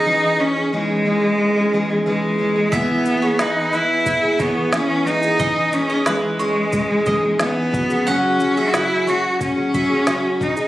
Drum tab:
SH |----------------|x-x-x-x-x-x-x-xx|x-x-x-x-x-x-x-xx|x-x-x-x-x-x-x-xx|
SD |----------------|----o-------o---|----o-------o---|----o-------o---|
BD |----------------|o-------o-o-----|o-------o-o---o-|--------o-o---o-|